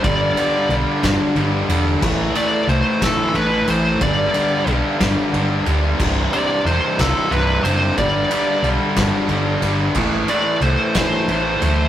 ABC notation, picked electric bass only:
X:1
M:6/8
L:1/16
Q:3/8=60
K:Gmix
V:1 name="Picked electric bass" clef=bass
G,,,2 z2 B,,, z G,, z G,,,2 E,,,2 | A,,,2 z2 C,, z A,, z A,,,2 A,,,2 | G,,,2 z2 B,,, z G,, z G,,,2 D,,,2 | C,,,2 z2 E,,, z C,, z C,,,2 ^F,,,2 |
G,,,2 z2 B,,, z G,, z G,,,2 G,,,2 | A,,,2 z2 C,, z A,, z A,,,2 D,,,2 |]